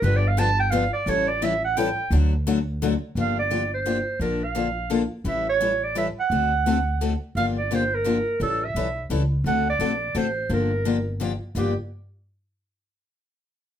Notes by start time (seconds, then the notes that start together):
0.02 G1 D3 F3 B3 D4 G4 B4
0.17 D5
0.28 F5
0.37 D3 F3 B3 D4 G4 A5
0.60 G5
0.71 D3 F3 B3 D4 G4 F5
0.93 D5
1.06 A1 E3 G3 C#4 E4 A4 C#5
1.28 D5
1.42 E3 G3 C#4 E4 A4 E5
1.65 F#5
1.77 E3 G3 C#4 E4 A4 G5
2.11 D2 D3 F#3 A3 D4 F#4
2.47 D3 F#3 A3 D4 F#4
2.82 D3 F#3 A3 D4 F#4
3.15 G1 D3 F3 A#3 D4 G4
3.20 F5
3.39 D5
3.50 D3 F3 A#3 D4 G4
3.74 C5
3.85 D3 F3 A#3 D4 G4
4.20 A#1 D3 F3 A#3 D4 A4 A#4
4.44 F5
4.55 D3 F3 A#3 D4 A4
4.90 D3 F3 A#3 D4 A4
5.24 A1 E3 G3 C#4 E4 A4 E5
5.50 C#5
5.60 E3 G3 C#4 E4 A4
5.84 D5
5.95 E3 G3 C#4 E4 A4 E5
6.20 F#5
6.30 D2 D3 A3 C4 F#4 A4
6.66 D3 A3 C4 F#4 A4
7.01 D3 A3 C4 F#4 A4
7.35 G1 D3 F3 A#3 D4 G4 F5
7.58 D5
7.71 D3 F3 A#3 D4 G4 C5
7.95 A#4
8.04 D3 F3 A#3 D4 G4
8.40 A1 E3 G3 C#4 E4 A4
8.65 E5
8.75 B1 E3 G3 C#4 E4 A4
9.10 C#2 E3 G3 C#4 E4 A4
9.44 D2 D3 A3 C4 F#4 A4 F#5
9.70 D5
9.79 A#1 D3 A3 C4 F#4 A4
10.15 A1 D3 A3 C4 F#4 A4 C5
10.49 G1 D3 F3 A#3 D4 G4
10.54 A#4
10.85 D3 F3 A#3 D4 G4
11.20 D3 F3 A#3 D4 G4
11.55 G1 G2 D3 F3 A#3 D4 G4